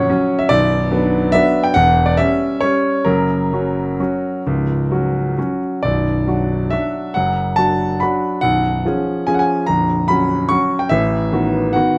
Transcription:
Already playing: A#0 C#4 C#5 F#5
0.10 F#3 C#4
0.39 E5
0.49 B0 B1 D5
0.91 F#3 B3 D4
1.32 F#3 B3 D4 E5
1.64 G5
1.74 E1 E2 F#5
2.06 D5
2.17 G3 C#4 E5
2.61 G3 C#4 C#5
3.05 F#1 F#2 A#4
3.53 F#3 C#4 F#4
4.00 F#3 C#4 F#4
4.46 C#1 C#2
4.91 F#3 C#4 F#4
5.38 F#3 C#4 F#4
5.83 B0 B1 D5
6.27 F#3 D4 F#4
6.71 F#3 D4 F#4 E5
7.14 F#1 F#2 F#5
7.56 F#3 D4 F#4 A5
8.00 F#3 D4 F#4 B5
8.41 B0 B1 F#5
8.85 F3 C#4 G#4
9.27 F3 C#4 G#4 G#5
9.34 F#5
9.39 G#5
9.66 A#0 A#1 A#5
10.08 F#3 C#4 F#4 B5
10.49 F#3 C#4 F#4 C#6
10.79 G5
10.89 A1 A2 E5
11.32 D#3 B3 F#4
11.73 D#3 B3 F#4 F#5

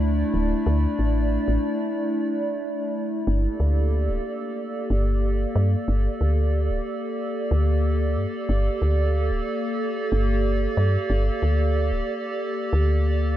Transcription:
Already playing: D2 A3 D4 E4 D5
0.34 D1
0.66 D2
0.99 A1
1.48 A1
3.27 G1 A#3 G4 A4 D5
3.60 D2
4.09 D1
4.90 G1
5.56 G2
5.88 G1
6.21 D2
6.70 D1
7.51 D2
8.17 G2
8.49 G1
8.82 D2
9.31 D1
10.12 G1
10.77 G2
11.10 G1
11.42 D2
11.91 D1
12.73 D2

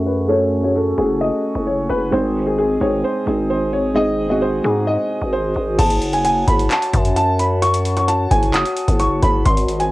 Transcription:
Already playing: F#2 A3 C#4 F#4 G#4 A4 F#5 G#5 C#6
0.06 B4
0.28 A3 C#4 F#4 A4 C#5
0.62 A3 C#4 F#4 G#4 C#5
0.75 A4
0.97 F#1 A3 C#4 F#4 G#4
1.21 D#5
1.55 F#1
1.67 C#5
1.90 F#1 B4
2.11 G#1 G#3 C4 D#4 G#4 C5 D#5 D#6
2.47 G#4
2.59 G#4
2.80 G#1 G#3 C4 D#4 G#4 C#5
3.04 C5
3.26 G#1 G#3 C4 D#4 G#4
3.50 C5
3.73 C#5
3.95 G#3 C4 D#4 G#4 D#5
4.29 G#3 C4 D#4 F#4 D#5
4.42 C5
4.63 G#2 G#3 C4 D#4 G#4
4.87 D#5
5.22 G#1
5.33 C5
5.56 G#1
5.79 F#1 F#4 C#5 F#5 A5, kick, closed hi-hat, crash
5.90 closed hi-hat
6.02 closed hi-hat
6.13 G#5, closed hi-hat
6.25 G#5, closed hi-hat
6.48 F#1 B5, kick, closed hi-hat
6.59 closed hi-hat
6.70 A5, clap, closed hi-hat
6.82 closed hi-hat
6.93 F#2, kick, closed hi-hat
7.05 closed hi-hat
7.16 A5, closed hi-hat
7.39 B5, closed hi-hat
7.62 F#5 C#6, closed hi-hat
7.74 closed hi-hat
7.85 closed hi-hat
7.97 C#6, closed hi-hat
8.08 A5, closed hi-hat
8.31 F#1 G#5, kick, closed hi-hat
8.43 closed hi-hat
8.54 D#6, clap, closed hi-hat
8.65 closed hi-hat
8.77 closed hi-hat
8.88 F#1, kick, closed hi-hat
9.00 C#6, closed hi-hat
9.23 F#1 B5, kick, closed hi-hat
9.45 G#1 G#3 G#4 C5 D#5 C6, kick, closed hi-hat
9.57 closed hi-hat
9.68 closed hi-hat
9.80 G#5, closed hi-hat

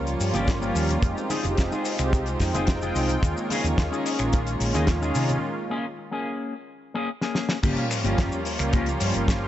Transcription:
Already playing: C#2 A#3 F4 G4 C#5
0.07 closed hi-hat, shaker
0.20 G2 F3 G3 A#3 C#4 F4, open hi-hat, shaker
0.34 G1 A#3 F4 G4, closed hi-hat, high conga, shaker
0.48 kick, snare, closed hi-hat, low conga, shaker
0.61 F3 G3 A#3 C#4 F4 G4, shaker
0.75 D#2, open hi-hat, shaker
0.89 closed hi-hat, low conga, shaker
1.02 F1 G#3 C4 D#4 F4 G4 C5, kick, closed hi-hat, shaker
1.17 shaker
1.29 D#4 F4 G#4, open hi-hat, high conga, shaker
1.44 F1 G#3 C4 D#4 F4 G4, closed hi-hat, high conga, shaker
1.57 F1, muted clean electric guitar stroke, kick, snare, closed hi-hat, shaker
1.71 D#4 F4 G#4, shaker
1.85 open hi-hat, shaker
1.98 C2 G#3 C4 D#4 F4 G4, finger snap, closed hi-hat, shaker
2.13 kick, closed hi-hat, shaker
2.26 closed hi-hat, shaker
2.40 F2 G#3 C4 D#4 F4 G5, kick, snare, open hi-hat, shaker
2.54 F1 D#4 F4 G#4, closed hi-hat, high conga, shaker
2.67 kick, snare, closed hi-hat, low conga, shaker
2.81 G#3 C4 D#4 F4 G#4 G5, shaker
2.95 C2, open hi-hat, shaker
3.09 closed hi-hat, low conga, shaker
3.22 D#2 D#3 G#3 A#3 C#4 F4 G#4 C#5, kick, closed hi-hat, shaker
3.37 shaker
3.50 C#4 D#4 G#4, open hi-hat, high conga, shaker
3.64 D#2 D#3 G#3 A#3 C#4 F4, closed hi-hat, high conga, shaker
3.78 D#2, muted clean electric guitar stroke, kick, snare, closed hi-hat, shaker
3.92 C#4 D#4 G#4, shaker
4.06 open hi-hat, shaker
4.19 A#1 D#3 G#3 A#3 C#4 F4, finger snap, closed hi-hat, shaker
4.33 kick, closed hi-hat, shaker
4.47 closed hi-hat, shaker
4.60 A#1 D#3 G#3 A#3 C#4 F4, open hi-hat, shaker
4.74 D#2 C#4 D#4 G#4, closed hi-hat, high conga, shaker
4.87 kick, snare, closed hi-hat, low conga, shaker
5.02 D#3 G#3 A#3 C#4 D#4 F4 G#4, shaker
5.15 C3, open hi-hat, shaker
5.29 closed hi-hat, low conga, shaker
5.70 A#3 C#4 G#4
5.98 muted clean electric guitar stroke
6.11 A#3 C#4 G#4
6.94 A#3 C#4 G#4
7.21 A#3 C#4 G#4, snare
7.35 snare
7.49 snare
7.63 G1 F3 G3 A#3 C#4 F4 G4 C#5, kick, closed hi-hat, crash, sub drop, shaker
7.77 closed hi-hat
7.91 finger snap, open hi-hat, shaker
8.04 G1 F3 G3 A#3 C#4 F4 G4, closed hi-hat, shaker
8.18 G1, kick, snare, closed hi-hat, shaker
8.32 shaker
8.45 open hi-hat, shaker
8.59 C#2 F3 G3 A#3 C#4 F4, finger snap, closed hi-hat, shaker
8.73 A#3 C#4 F4 G4, kick, closed hi-hat, shaker
8.86 closed hi-hat, shaker
9.00 G2 F3 G3 A#3 C#4 F4, muted clean electric guitar stroke, open hi-hat, shaker
9.14 G1, closed hi-hat, shaker
9.28 kick, snare, closed hi-hat, shaker
9.42 F3 G3 A#3 C#4 F4

